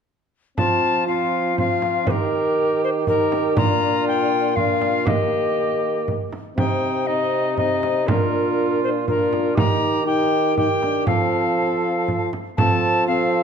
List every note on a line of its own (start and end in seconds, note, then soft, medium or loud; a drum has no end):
0.57 2.04 F3 medium
0.57 1.04 C4 medium
0.57 1.05 F4 medium
0.57 1.04 A5 medium
0.57 frame drum medium
1.07 1.57 C4 medium
1.07 1.57 F4 medium
1.07 1.56 F5 medium
1.57 2.09 C4 medium
1.57 2.11 F4 medium
1.57 2.08 F5 medium
1.57 frame drum soft
1.82 frame drum soft
2.07 3.58 D#3 medium
2.07 3.07 D#4 medium
2.07 3.07 G4 medium
2.07 2.12 C5 medium
2.07 frame drum medium
2.11 2.82 A#4 medium
2.84 2.90 C5 medium
3.07 3.59 D#4 medium
3.07 3.60 G4 medium
3.07 3.56 A#4 medium
3.07 frame drum soft
3.32 frame drum soft
3.57 5.08 A#2 medium
3.57 4.55 D4 medium
3.57 4.56 F4 medium
3.57 4.05 A#5 medium
3.57 frame drum medium
4.08 4.57 G5 medium
4.56 5.07 D4 medium
4.56 5.08 F4 medium
4.56 5.09 F5 medium
4.56 frame drum soft
4.82 frame drum medium
5.06 6.32 D#3 medium
5.06 6.32 A#3 medium
5.06 6.32 G4 medium
5.06 6.08 D#5 medium
5.06 frame drum medium
6.08 frame drum soft
6.33 frame drum soft
6.56 8.03 C3 medium
6.56 7.03 C4 medium
6.56 7.03 D#4 medium
6.56 7.08 G5 medium
6.56 frame drum medium
7.07 7.56 C4 medium
7.07 7.57 D#4 medium
7.07 7.57 D#5 medium
7.57 8.10 C4 medium
7.57 8.09 D#4 medium
7.57 8.08 D#5 medium
7.57 frame drum soft
7.83 frame drum soft
8.07 9.54 A#2 medium
8.07 9.07 D4 medium
8.07 9.07 F4 medium
8.07 8.82 A#4 medium
8.07 frame drum medium
8.84 8.90 C5 medium
9.08 9.59 D4 medium
9.08 9.57 F4 medium
9.08 9.56 A#4 medium
9.08 frame drum soft
9.33 frame drum soft
9.56 11.04 D#3 medium
9.56 10.06 D#4 medium
9.56 10.06 G4 medium
9.56 10.06 A#5 medium
9.56 frame drum medium
10.06 10.56 D#4 medium
10.06 10.55 G4 medium
10.06 10.56 G5 medium
10.56 10.68 D#4 medium
10.56 11.09 G4 medium
10.56 11.06 G5 medium
10.56 frame drum medium
10.82 11.09 D4 medium
10.82 frame drum soft
11.06 12.31 F3 medium
11.06 12.34 C4 medium
11.06 12.34 A4 medium
11.06 12.31 F5 medium
11.06 frame drum medium
12.08 frame drum soft
12.33 frame drum soft
12.57 13.43 F3 medium
12.57 13.05 C4 medium
12.57 13.05 A4 medium
12.57 13.04 A5 medium
12.57 frame drum medium
13.07 13.43 C4 medium
13.07 13.43 A4 medium
13.07 13.43 F5 medium